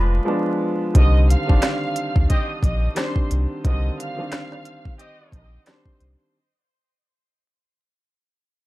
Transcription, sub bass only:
0.00 0.19 F1 loud
0.95 1.35 C2 loud
1.50 1.59 G1 medium
2.16 2.26 D2 medium
2.63 2.88 A#1 loud
3.31 3.46 C2 loud
3.65 3.90 C2 loud
5.33 5.58 A#1 medium
6.01 6.16 C2 medium

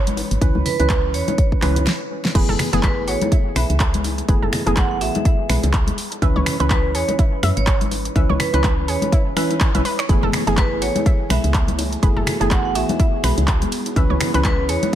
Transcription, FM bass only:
0.00 0.23 G#1 medium
0.31 0.37 G#1 medium
0.41 0.50 C#2 medium
0.55 0.62 C#2 loud
0.80 1.16 C#2 medium
1.14 1.23 E2 medium
1.62 1.87 C#2 loud
2.35 2.43 F#1 medium
2.49 2.55 F#1 loud
2.73 3.09 F#1 medium
3.08 3.16 A1 medium
3.56 3.64 B1 medium
3.70 4.22 C#2 medium
4.29 4.37 F#1 loud
4.42 4.49 F#1 medium
4.67 5.03 F#1 medium
5.01 5.10 A1 medium
5.50 5.58 B1 loud
5.63 5.92 C#2 medium
6.22 6.31 C#2 loud
6.36 6.42 C#2 loud
6.60 6.96 C#2 loud
6.95 7.03 E2 medium
7.43 7.52 F#2 loud
7.57 8.09 G#1 medium
8.16 8.24 C#2 loud
8.30 8.36 C#2 loud
8.54 8.90 C#2 medium
8.88 8.97 E2 medium
9.75 9.81 B1 medium
10.09 10.18 F#1 loud
10.23 10.29 F#1 medium
10.47 10.83 F#1 medium
10.82 10.90 A1 medium
11.30 11.39 B1 loud
11.44 11.96 C#2 medium
12.03 12.11 F#1 loud
12.17 12.23 F#1 loud
12.41 12.77 F#1 medium
12.75 12.84 A1 medium
13.24 13.32 B1 loud
13.38 13.66 C#2 medium
13.96 14.05 C#2 loud
14.10 14.17 C#2 loud
14.34 14.70 C#2 medium
14.69 14.77 E2 loud

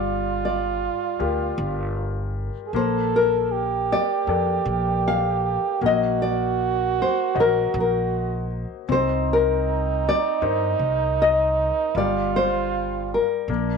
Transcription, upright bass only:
0.00 0.86 G1 medium
1.20 1.50 D2 medium
1.58 2.48 G1 medium
2.73 3.94 A#1 medium
4.27 4.57 F2 medium
4.65 5.56 A#1 medium
5.81 7.01 A#1 medium
7.36 7.65 A#1 medium
7.74 8.64 A#1 medium
8.89 10.08 C2 medium
10.42 10.72 G2 medium
10.79 11.69 C2 medium
11.95 13.15 G1 medium
13.48 13.77 A#1 medium

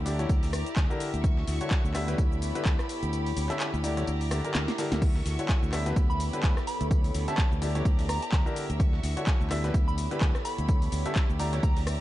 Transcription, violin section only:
0.00 1.22 G4 medium
0.06 1.23 D5 medium
0.06 3.10 E5 medium
0.06 1.23 A#5 medium
1.24 1.94 F#4 medium
1.24 1.94 C#6 medium
1.95 4.99 G4 medium
1.95 3.82 B5 medium
3.13 3.83 C#5 medium
3.84 5.01 D5 medium
3.84 6.88 E5 medium
3.84 5.01 A#5 medium
5.02 5.72 F#4 medium
5.02 5.72 C#6 medium
5.73 6.90 G4 medium
5.73 6.90 B5 medium
6.91 8.78 G4 medium
6.91 7.61 C#5 medium
6.91 7.61 B5 medium
7.62 8.79 D5 medium
7.62 10.66 E5 medium
7.62 8.79 A#5 medium
8.80 9.50 F#4 medium
8.80 9.50 C#6 medium
9.51 10.68 G4 medium
9.51 11.38 B5 medium
10.69 12.01 G4 medium
10.69 11.39 C#5 medium
11.40 12.01 D5 medium
11.40 12.01 E5 medium
11.40 12.01 A#5 medium

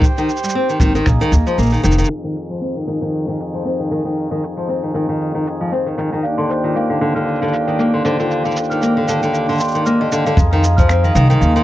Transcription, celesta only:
6.23 6.32 F5 medium
6.38 6.49 C6 medium
6.49 6.63 C5 medium
6.64 6.70 F4 medium
6.76 6.84 F5 medium
6.90 7.00 F5 loud
7.01 7.15 F5 medium
7.15 7.22 F6 medium
7.26 7.35 F5 medium
7.41 7.51 F5 medium
7.53 7.67 F5 medium
7.67 7.78 G5 medium
7.79 7.87 F5 medium
7.93 8.04 C6 medium
8.05 8.18 C5 medium
8.19 8.26 F4 medium
8.30 8.39 F5 medium
8.44 8.55 F5 medium
8.56 8.70 F5 medium
8.70 8.77 F6 medium
8.81 8.90 F5 medium
8.96 9.06 F5 medium
9.07 9.22 F5 medium
9.22 9.33 G5 medium
9.33 9.42 F5 medium
9.49 9.58 C6 medium
9.60 9.68 C6 medium
9.74 9.81 C6 medium
9.86 9.99 F6 medium
10.00 10.07 D#5 medium
10.11 10.24 F5 medium
10.25 10.36 F5 medium
10.37 10.45 F5 medium
10.51 10.61 F5 medium
10.62 10.77 F5 medium
10.77 10.84 F6 medium
10.88 10.97 F5 medium
11.03 11.13 F5 medium
11.14 11.28 F5 loud
11.29 11.40 G5 medium
11.40 11.49 F5 loud
11.55 11.63 C6 medium

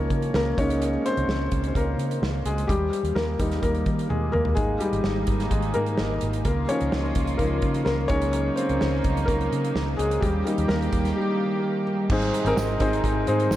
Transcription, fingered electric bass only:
0.10 0.30 C#3 medium
0.34 0.53 C#2 medium
0.58 0.96 C#2 medium
1.17 1.27 C#2 medium
1.28 1.47 C#2 medium
1.52 1.71 C#2 medium
1.75 1.95 C#2 medium
1.98 2.17 C#3 medium
2.22 2.41 C#2 medium
2.46 2.65 C#2 medium
2.69 2.89 D#2 medium
3.03 3.14 D#2 medium
3.16 3.35 D#2 medium
3.40 3.59 D#2 medium
3.63 3.82 D#2 medium
3.86 4.06 D#3 medium
4.10 4.29 D#2 medium
4.34 4.53 D#2 medium
4.57 4.76 G#1 medium
4.93 5.02 G#1 medium
5.05 5.24 G#1 medium
5.28 5.47 G#1 medium
5.52 5.71 G#1 medium
5.76 5.95 G#2 medium
5.99 6.18 G#1 medium
6.22 6.41 G#1 medium
6.45 6.65 C#2 medium
6.81 6.91 C#2 medium
6.93 7.12 C#2 medium
7.16 7.35 C#2 medium
7.39 7.59 C#2 medium
7.63 7.82 C#3 medium
7.86 8.05 C#2 medium
8.10 8.49 C#2 medium
8.70 8.79 C#2 medium
8.82 9.01 C#2 medium
9.05 9.24 C#2 medium
9.28 9.47 C#2 medium
9.52 9.71 C#3 medium
9.75 9.94 C#2 medium
9.99 10.18 C#2 medium
10.22 10.41 D#2 medium
10.58 10.67 D#2 medium
10.69 10.88 D#2 medium
10.92 11.12 D#2 medium
12.10 12.29 G#1 medium
12.45 12.54 G#1 medium
12.57 12.76 G#1 loud
12.81 13.00 G#1 medium
13.04 13.23 G#1 loud
13.28 13.47 G#2 medium
13.51 13.56 G#1 medium

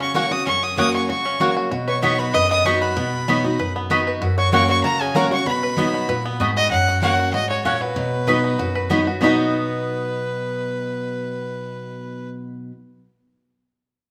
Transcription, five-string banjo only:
0.00 0.44 C#4 medium
0.00 0.15 F#4 medium
0.15 0.31 F#4 medium
0.32 0.63 F#4 medium
0.46 0.77 C#4 medium
0.63 0.94 F#4 medium
0.78 1.22 C#4 medium
0.95 1.09 F#4 medium
1.09 1.40 F#4 medium
1.25 1.69 C#4 medium
1.41 1.56 F#4 medium
1.57 1.71 F#4 medium
1.71 2.19 F#4 medium
1.88 2.31 B4 medium
2.03 2.47 B3 medium
2.19 2.81 F#4 medium
2.34 2.78 B4 medium
2.51 2.94 B3 medium
2.66 3.10 D#4 medium
2.82 3.91 F#4 medium
2.97 3.27 B3 medium
3.28 3.72 B3 medium
3.44 3.87 D#4 medium
3.60 4.04 B4 medium
3.76 4.19 B3 medium
3.91 4.21 F#4 medium
4.07 4.22 B4 medium
4.22 4.38 F#4 medium
4.38 4.69 F#4 medium
4.53 4.97 C#4 medium
4.69 4.84 F#4 medium
4.84 5.16 F#4 medium
5.01 5.44 C#4 medium
5.16 5.32 F#4 medium
5.32 5.46 F#4 medium
5.47 5.91 F#4 medium
5.63 6.06 B4 medium
5.78 6.22 B3 medium
5.94 6.37 F#4 medium
6.09 6.53 B4 medium
6.25 6.69 B3 medium
6.40 6.72 D#4 medium
6.57 6.72 F#4 medium
6.72 7.96 F#3 medium
6.88 7.03 F#4 medium
7.03 7.19 F#4 medium
7.19 7.34 F#4 medium
7.34 7.50 F#4 medium
7.51 7.81 F#4 medium
7.65 7.96 C#4 medium
7.81 8.59 F#4 medium
7.96 8.41 F#3 medium
8.28 8.72 B4 medium
8.44 8.87 D#4 medium
8.59 9.03 F#4 medium
8.75 9.19 B4 medium
8.91 9.20 B3 medium
9.07 9.22 F#4 medium
9.22 12.28 B3 medium
9.22 12.30 D#4 medium
9.26 12.33 F#4 medium

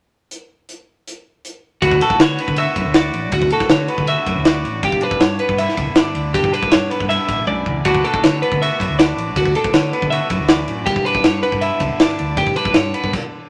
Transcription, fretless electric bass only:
1.82 1.99 D2 medium
2.19 2.36 D3 medium
2.48 2.65 D3 medium
2.76 2.84 F#2 medium
2.85 3.11 D2 medium
3.14 3.33 A1 medium
3.33 3.50 D2 medium
3.69 3.87 D3 medium
3.98 4.15 D3 medium
4.27 4.35 F#2 medium
4.36 4.62 D2 medium
4.64 4.83 A1 medium
4.83 5.00 G1 medium
5.21 5.38 G2 medium
5.49 5.66 G2 medium
5.78 5.86 C#2 medium
5.87 6.13 G1 medium
6.15 6.36 D2 medium
6.35 6.51 G1 medium
6.74 6.90 G2 medium
7.01 7.18 G2 medium
7.29 7.45 A1 medium
7.49 7.65 B1 medium
7.67 7.85 C#2 medium
7.85 8.02 D2 medium
8.25 8.41 D3 medium
8.52 8.69 D3 medium
8.80 8.88 F#2 medium
8.89 9.15 D2 medium
9.16 9.36 A1 medium
9.36 9.53 D2 medium
9.74 9.91 D3 medium
10.02 10.19 D3 medium
10.31 10.38 F#2 medium
10.38 10.65 D2 medium
10.67 10.86 A1 medium
10.86 11.04 G1 medium
11.24 11.42 G2 medium
11.52 11.70 G2 medium
11.80 11.89 C#2 medium
11.90 12.16 G1 medium
12.20 12.38 D2 medium
12.37 12.55 G1 medium
12.76 12.93 G2 medium
13.04 13.12 G2 medium

